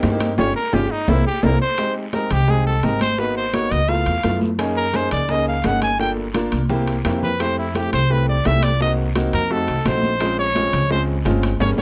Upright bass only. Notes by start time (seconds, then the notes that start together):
0.03 G2
0.38 G1
0.73 G1
1.08 C2
1.43 C2
2.31 C2
2.83 G#1
3.71 C#2
4.07 E2
4.24 F#2
5.12 C#2
5.64 G1
6.52 C2
7.05 F2
7.93 C2
8.46 C2
9.33 F2
9.68 C2
9.85 A#1
10.73 C#2
11.26 G1
11.60 G1
11.78 G1